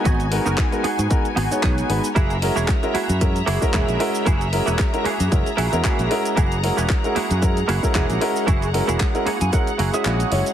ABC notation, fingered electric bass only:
X:1
M:4/4
L:1/16
Q:"Swing 16ths" 1/4=114
K:F#mix
V:1 name="Fingered electric bass" clef=bass
G,,,2 z F,,, z3 G,, z2 G,,, z B,,, z G,,, z | F,,,2 z E,,, z3 F,,2 z F,,, z E,,, A,,, z2 | F,,,2 z E,,, z3 F,, F,,, z A,,, E,, z A,,, z2 | F,,,2 z E,,, z3 F,,2 z F,,, z E,,, A,,, z2 |
F,,,2 z E,,, z3 F,, z2 F,,, z A,,, z F,,, z |]